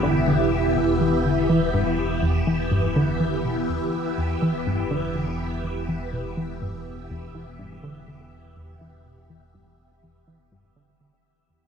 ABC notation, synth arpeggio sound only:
X:1
M:4/4
L:1/8
Q:1/4=123
K:Em
V:1 name="Synth arpeggio sound" clef=bass
D, D, z E,, E, D, E, G,, | z E,, E, G,, D, E, B,, E,, | z E,, E, G,, D, D, z E,, | E, B,, E, G,, z E,, E, G,, |
D, D, z E,, E, B,, E, G,, | z E,, E, G,, D, D, z E,, |]